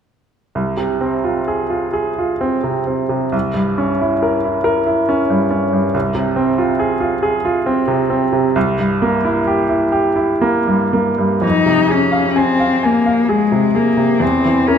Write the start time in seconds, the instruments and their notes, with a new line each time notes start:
0.55 grand piano C2
0.77 grand piano C3
1.01 grand piano C4
1.24 grand piano F4
1.48 grand piano G#4
1.70 grand piano F4
1.93 grand piano G#4
2.18 grand piano F4
2.41 grand piano C4
2.64 grand piano C3
2.87 grand piano C4
3.09 grand piano C3
3.32 grand piano C2
3.54 grand piano G2
3.78 grand piano C#4
4.01 grand piano E4
4.23 grand piano A#4
4.44 grand piano E4
4.64 grand piano A#4
4.86 grand piano E4
5.09 grand piano C#4
5.30 grand piano G2
5.51 grand piano C#4
5.73 grand piano G2
5.94 grand piano C2
6.15 grand piano C3
6.36 grand piano C4
6.58 grand piano F4
6.79 grand piano G#4
7.00 grand piano F4
7.23 grand piano G#4
7.45 grand piano F4
7.66 grand piano C4
7.88 grand piano C3
8.10 grand piano C4
8.33 grand piano C3
8.56 grand piano C2
8.79 grand piano G2
9.02 grand piano A#3
9.25 grand piano E4
9.47 grand piano G4
9.69 grand piano E4
9.92 grand piano G4
10.16 grand piano E4
10.41 grand piano A#3
10.67 grand piano G2
10.93 grand piano A#3
11.18 grand piano G2
11.42 grand piano F2, cello D#4
11.66 grand piano C3
11.88 cello C#4, grand piano G#4
12.12 grand piano F5
12.36 cello C4, grand piano G#5
12.60 grand piano F5
12.83 cello A#3, grand piano G#5
13.06 grand piano F5
13.29 cello G#3, grand piano G#4
13.52 grand piano C3
13.74 cello A#3, grand piano G#4
13.97 grand piano C3
14.20 grand piano E2, cello C4
14.45 grand piano E3
14.68 cello C#4, grand piano A#4